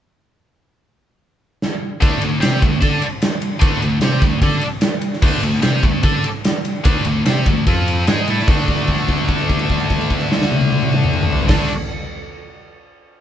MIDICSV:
0, 0, Header, 1, 4, 480
1, 0, Start_track
1, 0, Tempo, 401070
1, 504, Time_signature, 4, 2, 24, 8
1, 7224, Tempo, 407332
1, 15674, End_track
2, 0, Start_track
2, 0, Title_t, "Distorted electric guitar"
2, 0, Program_c, 0, 30
2, 2400, Note_on_c, 0, 50, 84
2, 2406, Note_on_c, 0, 57, 90
2, 2415, Note_on_c, 0, 62, 109
2, 2622, Note_off_c, 0, 57, 0
2, 2625, Note_off_c, 0, 50, 0
2, 2637, Note_on_c, 0, 57, 69
2, 2639, Note_on_c, 0, 50, 58
2, 2649, Note_off_c, 0, 62, 0
2, 2839, Note_off_c, 0, 57, 0
2, 2840, Note_off_c, 0, 50, 0
2, 2875, Note_on_c, 0, 60, 83
2, 2882, Note_on_c, 0, 67, 103
2, 2883, Note_on_c, 0, 72, 101
2, 3118, Note_on_c, 0, 50, 57
2, 3119, Note_off_c, 0, 60, 0
2, 3122, Note_off_c, 0, 67, 0
2, 3123, Note_off_c, 0, 72, 0
2, 3127, Note_on_c, 0, 57, 69
2, 3319, Note_off_c, 0, 50, 0
2, 3323, Note_off_c, 0, 57, 0
2, 3358, Note_on_c, 0, 62, 82
2, 3378, Note_on_c, 0, 69, 101
2, 3382, Note_on_c, 0, 74, 97
2, 3599, Note_off_c, 0, 62, 0
2, 3609, Note_off_c, 0, 69, 0
2, 3611, Note_off_c, 0, 74, 0
2, 4304, Note_on_c, 0, 50, 90
2, 4320, Note_on_c, 0, 57, 90
2, 4323, Note_on_c, 0, 62, 107
2, 4539, Note_off_c, 0, 50, 0
2, 4540, Note_off_c, 0, 57, 0
2, 4554, Note_on_c, 0, 50, 65
2, 4554, Note_on_c, 0, 57, 67
2, 4561, Note_off_c, 0, 62, 0
2, 4755, Note_off_c, 0, 50, 0
2, 4755, Note_off_c, 0, 57, 0
2, 4817, Note_on_c, 0, 60, 89
2, 4825, Note_on_c, 0, 67, 91
2, 4828, Note_on_c, 0, 72, 104
2, 5036, Note_off_c, 0, 60, 0
2, 5040, Note_on_c, 0, 50, 54
2, 5041, Note_on_c, 0, 57, 68
2, 5052, Note_off_c, 0, 67, 0
2, 5053, Note_off_c, 0, 72, 0
2, 5239, Note_off_c, 0, 50, 0
2, 5239, Note_off_c, 0, 57, 0
2, 5298, Note_on_c, 0, 62, 87
2, 5302, Note_on_c, 0, 69, 97
2, 5307, Note_on_c, 0, 74, 94
2, 5528, Note_off_c, 0, 62, 0
2, 5531, Note_off_c, 0, 69, 0
2, 5533, Note_off_c, 0, 74, 0
2, 6250, Note_on_c, 0, 50, 86
2, 6261, Note_on_c, 0, 57, 110
2, 6264, Note_on_c, 0, 62, 96
2, 6478, Note_off_c, 0, 50, 0
2, 6486, Note_off_c, 0, 57, 0
2, 6492, Note_on_c, 0, 50, 66
2, 6494, Note_off_c, 0, 62, 0
2, 6500, Note_on_c, 0, 57, 64
2, 6688, Note_off_c, 0, 50, 0
2, 6692, Note_off_c, 0, 57, 0
2, 6727, Note_on_c, 0, 60, 93
2, 6730, Note_on_c, 0, 67, 105
2, 6741, Note_on_c, 0, 72, 105
2, 6968, Note_off_c, 0, 60, 0
2, 6969, Note_off_c, 0, 67, 0
2, 6975, Note_off_c, 0, 72, 0
2, 6989, Note_on_c, 0, 50, 54
2, 6997, Note_on_c, 0, 57, 65
2, 7179, Note_off_c, 0, 50, 0
2, 7183, Note_off_c, 0, 57, 0
2, 7213, Note_on_c, 0, 62, 96
2, 7224, Note_on_c, 0, 74, 104
2, 7231, Note_on_c, 0, 69, 105
2, 7449, Note_off_c, 0, 62, 0
2, 7455, Note_off_c, 0, 74, 0
2, 7458, Note_off_c, 0, 69, 0
2, 8171, Note_on_c, 0, 50, 90
2, 8178, Note_on_c, 0, 62, 111
2, 8179, Note_on_c, 0, 57, 97
2, 8402, Note_off_c, 0, 50, 0
2, 8411, Note_off_c, 0, 62, 0
2, 8412, Note_off_c, 0, 57, 0
2, 8416, Note_on_c, 0, 50, 65
2, 8430, Note_on_c, 0, 57, 66
2, 8609, Note_off_c, 0, 50, 0
2, 8616, Note_off_c, 0, 57, 0
2, 8663, Note_on_c, 0, 60, 82
2, 8667, Note_on_c, 0, 72, 101
2, 8668, Note_on_c, 0, 67, 99
2, 8893, Note_off_c, 0, 60, 0
2, 8895, Note_off_c, 0, 72, 0
2, 8896, Note_off_c, 0, 67, 0
2, 8913, Note_on_c, 0, 50, 55
2, 8923, Note_on_c, 0, 57, 67
2, 9098, Note_off_c, 0, 50, 0
2, 9103, Note_off_c, 0, 57, 0
2, 9149, Note_on_c, 0, 53, 87
2, 9152, Note_on_c, 0, 60, 98
2, 9164, Note_on_c, 0, 65, 99
2, 9617, Note_off_c, 0, 53, 0
2, 9619, Note_off_c, 0, 60, 0
2, 9625, Note_off_c, 0, 65, 0
2, 9626, Note_on_c, 0, 56, 91
2, 9639, Note_on_c, 0, 63, 96
2, 9641, Note_on_c, 0, 68, 109
2, 9856, Note_off_c, 0, 56, 0
2, 9862, Note_off_c, 0, 63, 0
2, 9863, Note_off_c, 0, 68, 0
2, 9894, Note_on_c, 0, 57, 87
2, 9899, Note_on_c, 0, 64, 98
2, 9902, Note_on_c, 0, 69, 114
2, 10094, Note_on_c, 0, 50, 89
2, 10110, Note_off_c, 0, 57, 0
2, 10113, Note_off_c, 0, 64, 0
2, 10114, Note_off_c, 0, 69, 0
2, 10124, Note_on_c, 0, 57, 94
2, 10145, Note_on_c, 0, 62, 101
2, 13619, Note_off_c, 0, 50, 0
2, 13623, Note_on_c, 0, 50, 105
2, 13641, Note_off_c, 0, 57, 0
2, 13646, Note_on_c, 0, 57, 106
2, 13663, Note_off_c, 0, 62, 0
2, 13668, Note_on_c, 0, 62, 111
2, 13856, Note_off_c, 0, 50, 0
2, 13868, Note_off_c, 0, 57, 0
2, 13879, Note_off_c, 0, 62, 0
2, 15674, End_track
3, 0, Start_track
3, 0, Title_t, "Picked electric bass"
3, 0, Program_c, 1, 34
3, 2427, Note_on_c, 1, 38, 84
3, 2646, Note_off_c, 1, 38, 0
3, 2678, Note_on_c, 1, 38, 80
3, 2892, Note_off_c, 1, 38, 0
3, 2909, Note_on_c, 1, 48, 94
3, 3126, Note_off_c, 1, 48, 0
3, 3141, Note_on_c, 1, 38, 86
3, 3362, Note_off_c, 1, 38, 0
3, 3382, Note_on_c, 1, 50, 85
3, 3602, Note_off_c, 1, 50, 0
3, 4329, Note_on_c, 1, 38, 86
3, 4554, Note_off_c, 1, 38, 0
3, 4586, Note_on_c, 1, 38, 79
3, 4803, Note_off_c, 1, 38, 0
3, 4828, Note_on_c, 1, 48, 89
3, 5044, Note_off_c, 1, 48, 0
3, 5056, Note_on_c, 1, 38, 83
3, 5278, Note_off_c, 1, 38, 0
3, 5286, Note_on_c, 1, 50, 90
3, 5513, Note_off_c, 1, 50, 0
3, 6259, Note_on_c, 1, 38, 87
3, 6482, Note_off_c, 1, 38, 0
3, 6496, Note_on_c, 1, 38, 89
3, 6721, Note_off_c, 1, 38, 0
3, 6745, Note_on_c, 1, 48, 99
3, 6967, Note_off_c, 1, 48, 0
3, 6984, Note_on_c, 1, 38, 88
3, 7208, Note_off_c, 1, 38, 0
3, 7229, Note_on_c, 1, 50, 100
3, 7448, Note_off_c, 1, 50, 0
3, 8196, Note_on_c, 1, 38, 83
3, 8411, Note_off_c, 1, 38, 0
3, 8417, Note_on_c, 1, 38, 80
3, 8641, Note_off_c, 1, 38, 0
3, 8667, Note_on_c, 1, 48, 89
3, 8886, Note_off_c, 1, 48, 0
3, 8913, Note_on_c, 1, 38, 86
3, 9129, Note_off_c, 1, 38, 0
3, 9154, Note_on_c, 1, 41, 91
3, 9594, Note_off_c, 1, 41, 0
3, 9628, Note_on_c, 1, 44, 98
3, 9847, Note_off_c, 1, 44, 0
3, 9868, Note_on_c, 1, 45, 79
3, 10088, Note_off_c, 1, 45, 0
3, 10103, Note_on_c, 1, 38, 92
3, 13555, Note_off_c, 1, 38, 0
3, 13660, Note_on_c, 1, 38, 86
3, 13859, Note_off_c, 1, 38, 0
3, 15674, End_track
4, 0, Start_track
4, 0, Title_t, "Drums"
4, 1943, Note_on_c, 9, 38, 66
4, 2063, Note_off_c, 9, 38, 0
4, 2417, Note_on_c, 9, 51, 98
4, 2420, Note_on_c, 9, 36, 112
4, 2537, Note_off_c, 9, 51, 0
4, 2540, Note_off_c, 9, 36, 0
4, 2651, Note_on_c, 9, 51, 75
4, 2771, Note_off_c, 9, 51, 0
4, 2899, Note_on_c, 9, 51, 100
4, 2909, Note_on_c, 9, 38, 104
4, 3019, Note_off_c, 9, 51, 0
4, 3029, Note_off_c, 9, 38, 0
4, 3138, Note_on_c, 9, 51, 73
4, 3140, Note_on_c, 9, 36, 88
4, 3258, Note_off_c, 9, 51, 0
4, 3259, Note_off_c, 9, 36, 0
4, 3372, Note_on_c, 9, 51, 103
4, 3377, Note_on_c, 9, 36, 83
4, 3492, Note_off_c, 9, 51, 0
4, 3497, Note_off_c, 9, 36, 0
4, 3611, Note_on_c, 9, 51, 77
4, 3731, Note_off_c, 9, 51, 0
4, 3851, Note_on_c, 9, 51, 102
4, 3860, Note_on_c, 9, 38, 109
4, 3970, Note_off_c, 9, 51, 0
4, 3980, Note_off_c, 9, 38, 0
4, 4089, Note_on_c, 9, 51, 70
4, 4208, Note_off_c, 9, 51, 0
4, 4322, Note_on_c, 9, 51, 108
4, 4330, Note_on_c, 9, 36, 111
4, 4442, Note_off_c, 9, 51, 0
4, 4450, Note_off_c, 9, 36, 0
4, 4574, Note_on_c, 9, 51, 75
4, 4694, Note_off_c, 9, 51, 0
4, 4797, Note_on_c, 9, 51, 91
4, 4806, Note_on_c, 9, 38, 104
4, 4917, Note_off_c, 9, 51, 0
4, 4926, Note_off_c, 9, 38, 0
4, 5049, Note_on_c, 9, 36, 89
4, 5050, Note_on_c, 9, 51, 72
4, 5059, Note_on_c, 9, 38, 30
4, 5169, Note_off_c, 9, 36, 0
4, 5170, Note_off_c, 9, 51, 0
4, 5179, Note_off_c, 9, 38, 0
4, 5285, Note_on_c, 9, 36, 81
4, 5285, Note_on_c, 9, 51, 86
4, 5405, Note_off_c, 9, 36, 0
4, 5405, Note_off_c, 9, 51, 0
4, 5522, Note_on_c, 9, 51, 74
4, 5642, Note_off_c, 9, 51, 0
4, 5757, Note_on_c, 9, 51, 87
4, 5766, Note_on_c, 9, 38, 109
4, 5876, Note_off_c, 9, 51, 0
4, 5886, Note_off_c, 9, 38, 0
4, 6001, Note_on_c, 9, 51, 69
4, 6121, Note_off_c, 9, 51, 0
4, 6146, Note_on_c, 9, 38, 33
4, 6251, Note_on_c, 9, 49, 103
4, 6252, Note_on_c, 9, 36, 114
4, 6266, Note_off_c, 9, 38, 0
4, 6371, Note_off_c, 9, 36, 0
4, 6371, Note_off_c, 9, 49, 0
4, 6497, Note_on_c, 9, 51, 69
4, 6617, Note_off_c, 9, 51, 0
4, 6729, Note_on_c, 9, 51, 89
4, 6739, Note_on_c, 9, 38, 106
4, 6849, Note_off_c, 9, 51, 0
4, 6859, Note_off_c, 9, 38, 0
4, 6975, Note_on_c, 9, 51, 79
4, 6980, Note_on_c, 9, 36, 91
4, 7095, Note_off_c, 9, 51, 0
4, 7100, Note_off_c, 9, 36, 0
4, 7217, Note_on_c, 9, 51, 93
4, 7224, Note_on_c, 9, 36, 85
4, 7335, Note_off_c, 9, 51, 0
4, 7342, Note_off_c, 9, 36, 0
4, 7463, Note_on_c, 9, 51, 80
4, 7581, Note_off_c, 9, 51, 0
4, 7706, Note_on_c, 9, 51, 88
4, 7715, Note_on_c, 9, 38, 99
4, 7824, Note_off_c, 9, 51, 0
4, 7833, Note_off_c, 9, 38, 0
4, 7944, Note_on_c, 9, 51, 74
4, 8062, Note_off_c, 9, 51, 0
4, 8180, Note_on_c, 9, 51, 106
4, 8188, Note_on_c, 9, 36, 116
4, 8298, Note_off_c, 9, 51, 0
4, 8306, Note_off_c, 9, 36, 0
4, 8415, Note_on_c, 9, 51, 67
4, 8533, Note_off_c, 9, 51, 0
4, 8663, Note_on_c, 9, 51, 94
4, 8672, Note_on_c, 9, 38, 96
4, 8780, Note_off_c, 9, 51, 0
4, 8790, Note_off_c, 9, 38, 0
4, 8901, Note_on_c, 9, 51, 77
4, 8907, Note_on_c, 9, 36, 85
4, 9019, Note_off_c, 9, 51, 0
4, 9024, Note_off_c, 9, 36, 0
4, 9145, Note_on_c, 9, 51, 93
4, 9147, Note_on_c, 9, 36, 79
4, 9263, Note_off_c, 9, 51, 0
4, 9265, Note_off_c, 9, 36, 0
4, 9394, Note_on_c, 9, 51, 67
4, 9512, Note_off_c, 9, 51, 0
4, 9624, Note_on_c, 9, 51, 92
4, 9634, Note_on_c, 9, 38, 110
4, 9742, Note_off_c, 9, 51, 0
4, 9752, Note_off_c, 9, 38, 0
4, 9863, Note_on_c, 9, 51, 65
4, 9981, Note_off_c, 9, 51, 0
4, 9997, Note_on_c, 9, 38, 32
4, 10099, Note_on_c, 9, 57, 88
4, 10103, Note_on_c, 9, 36, 107
4, 10115, Note_off_c, 9, 38, 0
4, 10216, Note_off_c, 9, 57, 0
4, 10221, Note_off_c, 9, 36, 0
4, 10337, Note_on_c, 9, 57, 40
4, 10339, Note_on_c, 9, 36, 62
4, 10449, Note_on_c, 9, 49, 43
4, 10455, Note_off_c, 9, 57, 0
4, 10457, Note_off_c, 9, 36, 0
4, 10566, Note_off_c, 9, 49, 0
4, 10570, Note_on_c, 9, 57, 41
4, 10579, Note_on_c, 9, 36, 61
4, 10688, Note_off_c, 9, 57, 0
4, 10690, Note_on_c, 9, 49, 47
4, 10697, Note_off_c, 9, 36, 0
4, 10808, Note_off_c, 9, 49, 0
4, 10810, Note_on_c, 9, 57, 48
4, 10817, Note_on_c, 9, 36, 64
4, 10926, Note_on_c, 9, 49, 42
4, 10927, Note_off_c, 9, 57, 0
4, 10935, Note_off_c, 9, 36, 0
4, 11043, Note_off_c, 9, 49, 0
4, 11052, Note_on_c, 9, 57, 47
4, 11054, Note_on_c, 9, 36, 66
4, 11169, Note_on_c, 9, 49, 46
4, 11170, Note_off_c, 9, 57, 0
4, 11171, Note_off_c, 9, 36, 0
4, 11287, Note_off_c, 9, 49, 0
4, 11299, Note_on_c, 9, 36, 69
4, 11303, Note_on_c, 9, 57, 53
4, 11411, Note_on_c, 9, 49, 51
4, 11417, Note_off_c, 9, 36, 0
4, 11421, Note_off_c, 9, 57, 0
4, 11529, Note_off_c, 9, 49, 0
4, 11532, Note_on_c, 9, 57, 46
4, 11540, Note_on_c, 9, 36, 63
4, 11650, Note_off_c, 9, 57, 0
4, 11655, Note_on_c, 9, 49, 54
4, 11657, Note_off_c, 9, 36, 0
4, 11773, Note_off_c, 9, 49, 0
4, 11781, Note_on_c, 9, 36, 65
4, 11783, Note_on_c, 9, 57, 49
4, 11899, Note_off_c, 9, 36, 0
4, 11901, Note_off_c, 9, 57, 0
4, 11907, Note_on_c, 9, 49, 59
4, 12013, Note_on_c, 9, 57, 52
4, 12019, Note_on_c, 9, 36, 61
4, 12025, Note_off_c, 9, 49, 0
4, 12131, Note_off_c, 9, 57, 0
4, 12137, Note_off_c, 9, 36, 0
4, 12139, Note_on_c, 9, 49, 55
4, 12257, Note_off_c, 9, 49, 0
4, 12269, Note_on_c, 9, 38, 85
4, 12385, Note_off_c, 9, 38, 0
4, 12385, Note_on_c, 9, 38, 95
4, 12503, Note_off_c, 9, 38, 0
4, 12503, Note_on_c, 9, 48, 85
4, 12615, Note_off_c, 9, 48, 0
4, 12615, Note_on_c, 9, 48, 94
4, 12733, Note_off_c, 9, 48, 0
4, 12748, Note_on_c, 9, 48, 95
4, 12866, Note_off_c, 9, 48, 0
4, 12869, Note_on_c, 9, 47, 98
4, 12987, Note_off_c, 9, 47, 0
4, 12989, Note_on_c, 9, 47, 96
4, 13107, Note_off_c, 9, 47, 0
4, 13117, Note_on_c, 9, 45, 97
4, 13233, Note_off_c, 9, 45, 0
4, 13233, Note_on_c, 9, 45, 101
4, 13343, Note_off_c, 9, 45, 0
4, 13343, Note_on_c, 9, 45, 106
4, 13456, Note_on_c, 9, 43, 91
4, 13461, Note_off_c, 9, 45, 0
4, 13574, Note_off_c, 9, 43, 0
4, 13576, Note_on_c, 9, 43, 103
4, 13644, Note_on_c, 9, 57, 109
4, 13652, Note_on_c, 9, 36, 108
4, 13653, Note_on_c, 9, 38, 104
4, 13694, Note_off_c, 9, 43, 0
4, 13762, Note_off_c, 9, 57, 0
4, 13769, Note_off_c, 9, 36, 0
4, 13771, Note_off_c, 9, 38, 0
4, 15674, End_track
0, 0, End_of_file